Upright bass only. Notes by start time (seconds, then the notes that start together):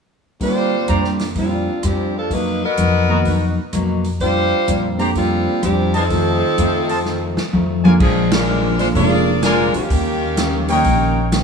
0.89 F2
1.84 F2
2.78 F2
3.73 F2
4.68 F2
5.63 F2
6.58 F2
7.53 F2
8.00 A#1
8.95 F1
9.74 muted upright bass stroke
9.90 D#2
10.85 A#1